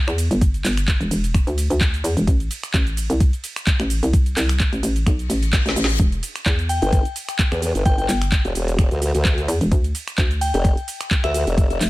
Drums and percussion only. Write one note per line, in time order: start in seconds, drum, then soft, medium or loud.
0.08 finger snap medium
0.08 cabasa soft
0.18 open hi-hat loud
0.18 ride medium
0.18 cabasa medium
0.31 closed hi-hat soft
0.31 cabasa soft
0.41 kick loud
0.41 closed hi-hat medium
0.41 cabasa soft
0.54 closed hi-hat soft
0.54 cabasa soft
0.65 clap medium
0.65 open hi-hat loud
0.65 ride medium
0.65 cabasa medium
0.77 finger snap medium
0.77 closed hi-hat medium
0.77 cabasa soft
0.88 kick loud
0.88 clap loud
0.88 closed hi-hat medium
0.88 cabasa soft
1.01 closed hi-hat soft
1.01 cabasa soft
1.11 open hi-hat medium
1.11 ride medium
1.11 cabasa medium
1.24 closed hi-hat medium
1.24 cabasa soft
1.34 finger snap medium
1.34 kick loud
1.34 closed hi-hat medium
1.34 cabasa soft
1.47 closed hi-hat soft
1.47 cabasa soft
1.58 open hi-hat loud
1.58 ride medium
1.58 cabasa medium
1.70 closed hi-hat medium
1.70 cabasa soft
1.81 kick loud
1.81 clap loud
1.81 closed hi-hat medium
1.81 cabasa soft
1.94 closed hi-hat soft
1.94 cabasa soft
2.04 open hi-hat medium
2.04 ride medium
2.04 cabasa medium
2.17 closed hi-hat medium
2.17 cabasa soft
2.27 kick loud
2.27 closed hi-hat medium
2.27 cabasa soft
2.40 closed hi-hat soft
2.40 cabasa soft
2.51 open hi-hat loud
2.51 ride medium
2.51 cabasa medium
2.63 finger snap medium
2.63 closed hi-hat medium
2.63 cabasa soft
2.74 kick loud
2.74 clap loud
2.74 closed hi-hat medium
2.74 cabasa soft
2.87 closed hi-hat soft
2.87 cabasa soft
2.97 open hi-hat medium
2.97 ride medium
2.97 cabasa medium
3.10 closed hi-hat medium
3.10 cabasa soft
3.20 kick loud
3.20 closed hi-hat medium
3.20 cabasa soft
3.33 closed hi-hat soft
3.33 cabasa soft
3.44 open hi-hat loud
3.44 ride medium
3.44 cabasa medium
3.56 finger snap medium
3.56 closed hi-hat medium
3.56 cabasa soft
3.67 kick loud
3.67 clap loud
3.67 closed hi-hat medium
3.67 cabasa soft
3.80 finger snap medium
3.80 cabasa soft
3.90 open hi-hat medium
3.90 ride medium
3.90 cabasa medium
4.03 closed hi-hat medium
4.03 cabasa soft
4.13 kick loud
4.13 closed hi-hat medium
4.13 cabasa soft
4.26 closed hi-hat soft
4.26 cabasa soft
4.37 clap medium
4.37 open hi-hat loud
4.37 ride medium
4.37 cabasa medium
4.49 finger snap medium
4.49 closed hi-hat medium
4.49 cabasa soft
4.60 kick loud
4.60 clap loud
4.60 closed hi-hat medium
4.60 cabasa soft
4.73 closed hi-hat soft
4.73 cabasa soft
4.83 open hi-hat medium
4.83 ride medium
4.83 cabasa medium
4.96 closed hi-hat medium
4.96 cabasa soft
5.06 finger snap medium
5.06 kick loud
5.06 closed hi-hat medium
5.06 cabasa soft
5.19 closed hi-hat soft
5.19 cabasa soft
5.30 open hi-hat loud
5.30 ride medium
5.30 cabasa medium
5.43 closed hi-hat medium
5.43 cabasa soft
5.53 kick loud
5.53 snare medium
5.53 clap loud
5.53 closed hi-hat medium
5.53 cabasa medium
5.66 snare medium
5.66 closed hi-hat soft
5.66 cabasa soft
5.76 open hi-hat medium
5.76 ride medium
5.76 cabasa medium
5.84 snare loud
5.89 closed hi-hat medium
5.89 cabasa soft
6.00 kick loud
6.00 closed hi-hat medium
6.00 cabasa soft
6.12 closed hi-hat soft
6.12 cabasa soft
6.23 open hi-hat loud
6.23 ride medium
6.23 cabasa medium
6.36 finger snap medium
6.36 closed hi-hat medium
6.36 cabasa soft
6.46 kick loud
6.46 clap loud
6.46 closed hi-hat medium
6.46 cabasa soft
6.59 closed hi-hat soft
6.59 cabasa soft
6.69 open hi-hat loud
6.69 ride medium
6.69 cabasa medium
6.82 closed hi-hat medium
6.82 cabasa soft
6.93 kick loud
6.93 closed hi-hat medium
6.93 cabasa soft
7.05 closed hi-hat soft
7.05 cabasa soft
7.16 open hi-hat loud
7.16 ride medium
7.16 cabasa medium
7.29 finger snap medium
7.29 closed hi-hat medium
7.29 cabasa soft
7.39 kick loud
7.39 clap loud
7.39 closed hi-hat medium
7.39 cabasa soft
7.52 finger snap medium
7.52 cabasa soft
7.62 open hi-hat medium
7.62 ride medium
7.62 cabasa medium
7.75 closed hi-hat medium
7.75 cabasa soft
7.86 kick loud
7.86 closed hi-hat medium
7.86 cabasa soft
7.98 closed hi-hat soft
7.98 cabasa soft
8.09 clap medium
8.09 open hi-hat loud
8.09 ride medium
8.09 cabasa medium
8.22 finger snap medium
8.22 closed hi-hat medium
8.22 cabasa soft
8.32 kick loud
8.32 clap loud
8.32 closed hi-hat medium
8.32 cabasa soft
8.45 closed hi-hat soft
8.45 cabasa soft
8.55 open hi-hat loud
8.55 ride medium
8.55 cabasa medium
8.68 closed hi-hat medium
8.68 cabasa soft
8.79 finger snap medium
8.79 kick loud
8.79 closed hi-hat medium
8.79 cabasa soft
8.91 closed hi-hat soft
8.91 cabasa soft
9.02 open hi-hat loud
9.02 ride medium
9.02 cabasa medium
9.15 closed hi-hat medium
9.15 cabasa soft
9.25 kick loud
9.25 clap loud
9.25 closed hi-hat medium
9.25 cabasa soft
9.38 closed hi-hat soft
9.38 cabasa soft
9.48 open hi-hat loud
9.48 ride medium
9.48 cabasa medium
9.61 closed hi-hat medium
9.61 cabasa soft
9.72 kick loud
9.72 closed hi-hat medium
9.72 cabasa soft
9.84 closed hi-hat soft
9.84 cabasa soft
9.95 open hi-hat loud
9.95 ride medium
9.95 cabasa medium
10.08 finger snap medium
10.08 closed hi-hat medium
10.08 cabasa soft
10.18 kick loud
10.18 clap loud
10.18 closed hi-hat medium
10.18 cabasa soft
10.31 closed hi-hat soft
10.31 cabasa soft
10.41 open hi-hat loud
10.41 ride medium
10.41 cabasa medium
10.54 closed hi-hat medium
10.54 cabasa soft
10.65 kick loud
10.65 closed hi-hat medium
10.65 cabasa soft
10.77 closed hi-hat soft
10.77 cabasa soft
10.88 open hi-hat loud
10.88 ride medium
10.88 cabasa medium
11.01 finger snap loud
11.01 closed hi-hat medium
11.01 cabasa soft
11.11 kick loud
11.11 clap loud
11.11 closed hi-hat medium
11.11 cabasa soft
11.24 finger snap medium
11.24 cabasa soft
11.34 open hi-hat loud
11.34 ride medium
11.34 cabasa medium
11.47 closed hi-hat medium
11.47 cabasa soft
11.58 kick loud
11.58 closed hi-hat medium
11.58 cabasa soft
11.70 closed hi-hat soft
11.70 cabasa soft
11.81 clap medium
11.81 open hi-hat loud
11.81 ride medium
11.81 cabasa medium